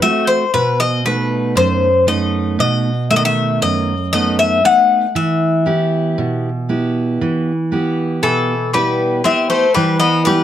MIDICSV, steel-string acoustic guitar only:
0, 0, Header, 1, 2, 480
1, 0, Start_track
1, 0, Key_signature, 1, "minor"
1, 0, Tempo, 1023891
1, 252, Time_signature, 9, 3, 24, 8
1, 4892, End_track
2, 0, Start_track
2, 0, Title_t, "Steel-string acoustic guitar"
2, 0, Program_c, 0, 25
2, 11, Note_on_c, 0, 57, 41
2, 13, Note_on_c, 0, 60, 39
2, 14, Note_on_c, 0, 66, 46
2, 204, Note_off_c, 0, 57, 0
2, 204, Note_off_c, 0, 60, 0
2, 205, Note_off_c, 0, 66, 0
2, 252, Note_on_c, 0, 47, 70
2, 493, Note_on_c, 0, 57, 47
2, 496, Note_on_c, 0, 59, 42
2, 499, Note_on_c, 0, 63, 52
2, 719, Note_off_c, 0, 47, 0
2, 729, Note_on_c, 0, 42, 58
2, 878, Note_off_c, 0, 57, 0
2, 880, Note_off_c, 0, 59, 0
2, 882, Note_off_c, 0, 63, 0
2, 970, Note_on_c, 0, 57, 44
2, 973, Note_on_c, 0, 63, 43
2, 975, Note_on_c, 0, 59, 37
2, 1198, Note_off_c, 0, 42, 0
2, 1214, Note_on_c, 0, 47, 59
2, 1357, Note_off_c, 0, 57, 0
2, 1359, Note_off_c, 0, 59, 0
2, 1359, Note_off_c, 0, 63, 0
2, 1454, Note_on_c, 0, 57, 42
2, 1457, Note_on_c, 0, 59, 38
2, 1459, Note_on_c, 0, 51, 43
2, 1681, Note_off_c, 0, 47, 0
2, 1695, Note_on_c, 0, 42, 54
2, 1839, Note_off_c, 0, 57, 0
2, 1841, Note_off_c, 0, 59, 0
2, 1842, Note_off_c, 0, 51, 0
2, 1939, Note_on_c, 0, 57, 46
2, 1940, Note_on_c, 0, 63, 51
2, 1942, Note_on_c, 0, 59, 41
2, 2162, Note_off_c, 0, 42, 0
2, 2170, Note_off_c, 0, 57, 0
2, 2170, Note_off_c, 0, 59, 0
2, 2172, Note_off_c, 0, 63, 0
2, 2175, Note_on_c, 0, 57, 40
2, 2176, Note_on_c, 0, 59, 38
2, 2178, Note_on_c, 0, 63, 43
2, 2368, Note_off_c, 0, 57, 0
2, 2368, Note_off_c, 0, 59, 0
2, 2370, Note_off_c, 0, 63, 0
2, 2415, Note_on_c, 0, 52, 65
2, 2652, Note_on_c, 0, 59, 48
2, 2655, Note_on_c, 0, 64, 44
2, 2657, Note_on_c, 0, 67, 52
2, 2882, Note_off_c, 0, 52, 0
2, 2897, Note_on_c, 0, 47, 56
2, 3039, Note_off_c, 0, 59, 0
2, 3039, Note_off_c, 0, 64, 0
2, 3041, Note_off_c, 0, 67, 0
2, 3137, Note_on_c, 0, 59, 38
2, 3139, Note_on_c, 0, 67, 45
2, 3140, Note_on_c, 0, 64, 38
2, 3362, Note_off_c, 0, 47, 0
2, 3382, Note_on_c, 0, 52, 58
2, 3521, Note_off_c, 0, 59, 0
2, 3522, Note_off_c, 0, 64, 0
2, 3522, Note_off_c, 0, 67, 0
2, 3618, Note_on_c, 0, 59, 40
2, 3621, Note_on_c, 0, 64, 37
2, 3623, Note_on_c, 0, 67, 43
2, 3844, Note_off_c, 0, 52, 0
2, 3856, Note_on_c, 0, 47, 49
2, 4001, Note_off_c, 0, 59, 0
2, 4001, Note_off_c, 0, 64, 0
2, 4004, Note_off_c, 0, 67, 0
2, 4099, Note_on_c, 0, 59, 44
2, 4101, Note_on_c, 0, 64, 40
2, 4103, Note_on_c, 0, 67, 50
2, 4320, Note_off_c, 0, 47, 0
2, 4329, Note_off_c, 0, 59, 0
2, 4330, Note_off_c, 0, 64, 0
2, 4331, Note_off_c, 0, 67, 0
2, 4335, Note_on_c, 0, 59, 38
2, 4336, Note_on_c, 0, 64, 37
2, 4337, Note_on_c, 0, 67, 44
2, 4526, Note_off_c, 0, 59, 0
2, 4527, Note_off_c, 0, 64, 0
2, 4527, Note_off_c, 0, 67, 0
2, 4577, Note_on_c, 0, 52, 65
2, 4814, Note_on_c, 0, 59, 51
2, 4814, Note_on_c, 0, 64, 43
2, 4816, Note_on_c, 0, 67, 55
2, 4892, Note_off_c, 0, 52, 0
2, 4892, Note_off_c, 0, 59, 0
2, 4892, Note_off_c, 0, 64, 0
2, 4892, Note_off_c, 0, 67, 0
2, 4892, End_track
0, 0, End_of_file